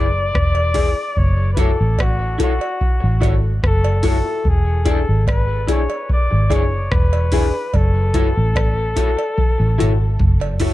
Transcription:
Already playing: F#1 D5
0.35 E1, kick, cross-stick
0.55 cowbell
0.74 E4 G#4 D5, kick, open hi-hat
0.96 muted clean electric guitar stroke
1.17 F#1 C#5, kick
1.53 E4 F#4 B4, kick, closed hi-hat
1.58 A4 C#5
1.81 A1
1.98 F#4, kick, cross-stick, cowbell
2.38 E4 F#4 A4 C#5, kick, closed hi-hat
2.43 F#4
2.59 muted clean electric guitar stroke, cowbell
2.81 kick
3.00 A1, muted clean electric guitar stroke
3.21 G#1 E4 F#4 A4 C#5, kick, closed hi-hat, cowbell
3.42 F#4 A4
3.63 F#1 A4, kick, cross-stick
3.85 cowbell
4.03 E4 F#4 A4 C#5, kick, open hi-hat
4.07 A4
4.24 E4 F#4 A4
4.45 E1 G#4, kick
4.85 D4 E4 G#4 D5, kick, closed hi-hat
4.90 A4
5.09 G#1
5.27 kick, cross-stick, cowbell
5.32 B4
5.67 D4 E4 G#4 D5, kick, closed hi-hat
5.72 C#5
5.89 muted clean electric guitar stroke, cowbell
6.10 D5, kick
6.31 G#1, muted clean electric guitar stroke
6.50 F#1 D4 E4 G#4 D5, kick, closed hi-hat, cowbell
6.54 C#5
6.92 E1 B4, kick, cross-stick
7.13 cowbell
7.32 D4 E4 G#4 D5, kick, open hi-hat
7.54 muted clean electric guitar stroke
7.74 F#1 A4, kick, cowbell
8.14 E4 F#4 A4 C#5, kick, closed hi-hat
8.37 A1
8.55 kick, cross-stick, cowbell
8.96 E4 F#4 A4 C#5, kick, closed hi-hat
9.17 muted clean electric guitar stroke, cowbell
9.38 kick, high tom
9.58 A1, muted clean electric guitar stroke
9.78 G#1 E4 F#4 A4 C#5, closed hi-hat, mid tom
10.00 F#4 A4
10.19 F#1, kick, mid tom
10.40 mid tom, cowbell
10.60 E4 F#4 A4 C#5, floor tom, open hi-hat

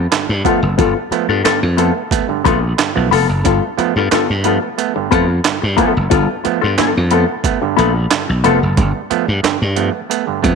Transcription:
0.11 G2 D3, snare, clap, closed hi-hat
0.29 G2, muted hollow-body jazz guitar stroke
0.45 F3 A3 B3 F4 A4, kick, closed hi-hat
0.63 F#1 A3 B3, muted hollow-body jazz guitar stroke
0.78 G1 G2 D3 B3 F4 A4, kick, closed hi-hat
0.96 A3 B3
1.11 F3 A3 B3, muted slap bass stroke, muted hollow-body jazz guitar stroke, closed hi-hat
1.29 G2 B3 F4 A4
1.43 G2 D3 B3 F4 A4, muted slap bass stroke, snare, clap, closed hi-hat
1.62 F2, muted hollow-body jazz guitar stroke
1.77 F3 A3 B3 F4 A4, closed hi-hat
1.95 A3 B3, muted hollow-body jazz guitar stroke
2.11 A3 B3, kick, closed hi-hat
2.29 G2 D3, muted hollow-body jazz guitar stroke
2.44 A#1 A3 B3 F4 A4, kick, closed hi-hat
2.63 muted hollow-body jazz guitar stroke
2.78 G2 D3, snare, clap, closed hi-hat
2.95 B1 F3 A3 B3, muted hollow-body jazz guitar stroke
3.11 F1 A3 B3 F4 A4, open hi-hat
3.29 F#1, muted hollow-body jazz guitar stroke
3.44 G1 G2 D3 B3 F4 A4, kick, closed hi-hat
3.62 A3 B3
3.78 F3 A3 B3, muted slap bass stroke, muted hollow-body jazz guitar stroke, closed hi-hat
3.96 G2 B3 F4 A4
4.11 G2 D3 B3 F4 A4, muted slap bass stroke, snare, clap, closed hi-hat
4.30 G2, muted hollow-body jazz guitar stroke
4.44 F3 A3 B3 F4 A4, closed hi-hat
4.62 A3 B3, muted hollow-body jazz guitar stroke
4.78 A3 B3, closed hi-hat
4.96 G2 D3, muted hollow-body jazz guitar stroke
5.11 F2 A3 B3 F4 A4, kick, closed hi-hat
5.28 muted hollow-body jazz guitar stroke
5.44 G2 D3, snare, clap, closed hi-hat
5.62 G2, muted hollow-body jazz guitar stroke
5.77 F3 A3 B3 F4 A4, kick, closed hi-hat
5.94 F#1, muted hollow-body jazz guitar stroke
6.10 G1 G2 D3 B3 F4 A4, kick, closed hi-hat
6.29 A3 B3
6.44 F3 A3 B3, muted hollow-body jazz guitar stroke, muted slap bass stroke, closed hi-hat
6.61 G2 B3 F4 A4
6.78 G2 D3 B3 F4 A4, muted slap bass stroke, snare, clap, closed hi-hat
6.95 F2, muted hollow-body jazz guitar stroke
7.11 F3 A3 B3 F4 A4, closed hi-hat
7.28 A3 B3, muted hollow-body jazz guitar stroke
7.44 A3 B3, kick, closed hi-hat
7.62 G2 D3, muted hollow-body jazz guitar stroke
7.76 A#1 A3 B3 F4 A4, closed hi-hat
7.95 muted hollow-body jazz guitar stroke
8.11 G2 D3, snare, clap, closed hi-hat
8.28 B1, muted hollow-body jazz guitar stroke
8.44 F1 F3 A3 B3 F4 A4, closed hi-hat
8.62 F#1 A3 B3, muted hollow-body jazz guitar stroke
8.77 G1 G2 D3, kick, closed hi-hat
8.95 A3 B3
9.10 F3 A3 B3, muted slap bass stroke, closed hi-hat
9.28 G2
9.43 G2 D3, muted slap bass stroke, snare, clap, closed hi-hat
9.62 G2
9.76 F3 A3 B3, closed hi-hat
9.94 A3 B3
10.10 A3 B3, closed hi-hat
10.27 G2 D3
10.43 F2 A3 B3, kick, closed hi-hat

